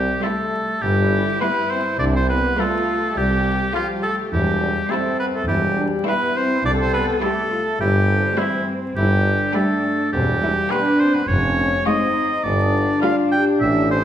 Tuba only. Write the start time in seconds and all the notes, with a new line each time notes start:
Already playing: C2
0.82 G1
1.99 C2
3.16 C2
4.33 E1
5.47 E1
6.64 C2
7.80 G1
8.96 G1
10.12 E1
11.29 F1
12.45 G1
13.62 A1